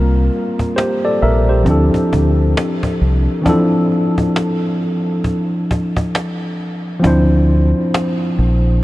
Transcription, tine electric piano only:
Already playing: G3 A#3 C4 F4 A#4
0.76 G4 C5
1.05 A4 D5
1.22 A#4 E5
1.49 G4 C5
1.63 F3 C4
1.67 D4 E4 A4
3.42 E3 C4 D4
3.47 F3 E4 A4
7.00 F3 C4 D4
7.05 E4 C5

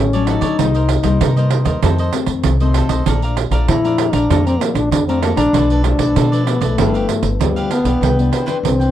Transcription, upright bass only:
Already playing: A1
0.42 D3
0.59 C2
1.04 C2
1.21 C3
1.66 D#2
1.83 F2
2.27 F2
2.45 C2
2.89 B1
3.07 A#1
3.51 A#1
3.68 A#2
4.13 A#1
4.30 F2
4.75 A#1
4.91 F2
5.36 A#1
5.53 B1
5.98 B1
6.16 B2
6.61 B1
6.78 G1
7.22 G1
7.40 D2
7.84 B1
8.01 C2
8.63 C2

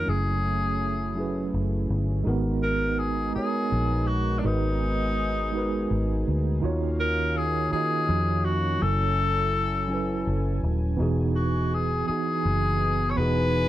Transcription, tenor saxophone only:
Already playing: A#4
0.09 G#4
2.63 A#4
2.99 G#4
3.35 G#4
4.07 F#4
4.39 D4
4.46 D#4
7.00 A#4
7.37 G#4
7.73 G#4
8.45 F#4
8.82 A4
11.36 F#4
11.74 G#4
12.07 G#4
13.11 C#5
13.17 B4

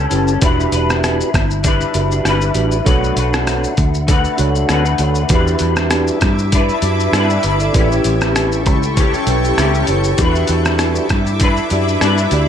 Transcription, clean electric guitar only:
Already playing: E3 G3 C#4 G4 A4
0.42 E3 G3 D4 E4 B4
0.72 E4 B4
0.76 D4
1.63 G3 D4 E4 B4
2.24 G3 D4 E4 B4
2.85 B2 F#3 A3 D4 F#4 B4
3.16 A3 D4 F#4 B4
4.07 A3 D4 F#4 B4
4.69 A3 D4 F#4 B4
5.29 E3 G3 D4
5.34 E4 B4
6.54 D4 E4 B4
7.13 G3 D4 E4
7.17 B4
7.73 A2 E3 G3
7.78 C#4 G4
8.96 E3 G3 C#4 G4
9.57 E3 G3 C#4 G4
10.18 E3 G3 D4
10.22 E4 B4
11.41 D4 E4 B4
12.01 G3 D4 E4 B4

